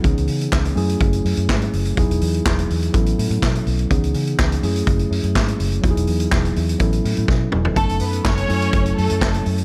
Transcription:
<<
  \new Staff \with { instrumentName = "String section" } { \time 4/4 \key fis \dorian \tempo 4 = 124 r1 | r1 | r1 | r1 |
<a a'>16 r16 <b b'>16 r16 <cis' cis''>4. <a a'>4 r8 | }
  \new Staff \with { instrumentName = "Tine electric piano" } { \time 4/4 \key fis \dorian <e b cis' dis' gis'>4. <fis a cis' e' gis'>2~ <fis a cis' e' gis'>8 | <fis b dis' e' gis'>2 <fis b cis' e' a'>2 | <dis e b cis' dis' gis'>4. <fis a cis' e' gis'>2~ <fis a cis' e' gis'>8 | <fis b dis' e' fis' gis'>2 <fis b cis' e' a'>2 |
<fis b cis' dis' a'>4. <fis a cis' e' a'>2~ <fis a cis' e' a'>8 | }
  \new Staff \with { instrumentName = "Fingered electric bass" } { \clef bass \time 4/4 \key fis \dorian cis,16 cis,16 cis8 cis,8 fis,8 fis,,8 fis,16 fis,16 gis,8 fis,,8 | e,,16 e,,16 e,8 e,,8 e,8 a,,8 a,16 a,16 b,8 b,,8 | cis,16 cis,16 cis8 cis,8 fis,8 fis,,8 fis,16 fis,16 gis,8 fis,,8 | e,,16 e,,16 e,8 e,,8 e,8 a,,8 a,16 a,16 b,8 e,,8 |
fis,,16 fis,,16 fis,8 fis,,8 fis,8 fis,,8 fis,16 fis,16 fis,,8 fis,8 | }
  \new DrumStaff \with { instrumentName = "Drums" } \drummode { \time 4/4 <hh bd>16 hh16 hho16 hh16 <hc bd sn>16 hh16 hho16 hh16 <hh bd>16 hh16 hho16 hh16 <hc bd sn>16 hh16 hho16 hh16 | <hh bd>16 hh16 hho16 hh16 <hc bd sn>16 hh16 hho16 hh16 <hh bd>16 hh16 hho16 hh16 <hc bd sn>16 hh16 hho16 hh16 | <hh bd>16 hh16 hho16 hh16 <hc bd sn>16 hh16 hho16 hh16 <hh bd>16 hh16 hho16 hh16 <hc bd sn>16 hh16 hho16 hh16 | <hh bd>16 hh16 hho16 hh16 <hc bd sn>16 hh16 hho16 hh16 <hh bd>16 hh16 hho16 hh16 <bd sn>8 toml16 tomfh16 |
<hh bd>16 hh16 hho16 hh16 <hc bd sn>16 hh16 hho16 hh16 <hh bd>16 hh16 hho16 hh16 <hc bd sn>16 hh16 hho16 hh16 | }
>>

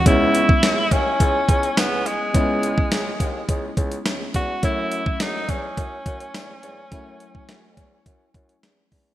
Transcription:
<<
  \new Staff \with { instrumentName = "Tenor saxophone" } { \time 4/4 \key cis \minor \tempo 4 = 105 e'4. cis'4. b8 gis8~ | gis2~ gis8 r4 fis'8 | e'4 dis'8 cis'2~ cis'8~ | cis'2. r4 | }
  \new Staff \with { instrumentName = "FM electric piano" } { \time 4/4 \key cis \minor <gis b cis' e'>1 | <gis b cis' e'>1 | <fis a cis' e'>1 | <fis a cis' e'>1 | }
  \new Staff \with { instrumentName = "Bassoon" } { \clef bass \time 4/4 \key cis \minor cis,4 cis,8 dis,8 cis,8 cis,8 cis,8 r8 | cis,4 cis,8 dis,8 cis,8 cis,8 cis,8 e,8 | fis,4 fis,8 e,8 fis,8 fis,8 e,8 e,8 | fis,4 fis,8 e,8 fis,8 fis,8 e,8 e,8 | }
  \new DrumStaff \with { instrumentName = "Drums" } \drummode { \time 4/4 <hh bd>8 hh16 bd16 <hh sn tamb>8 <hh bd>8 <hh bd>8 <hh bd>16 hh16 <hh sn tamb>8 hh8 | <hh bd>8 hh16 bd16 <hh sn tamb>8 <hh bd>8 <hh bd>8 <hh bd>16 hh16 <hh sn tamb>8 <hh bd>8 | <hh bd>8 hh16 bd16 <hh sn tamb>8 <hh bd>8 <hh bd>8 <hh bd>16 hh16 <hh sn tamb>8 hh8 | <hh bd>8 hh16 bd16 <hh sn>8 <hh bd>8 <hh bd>8 <hh bd>16 hh16 <hh sn>8 <hho bd>8 | }
>>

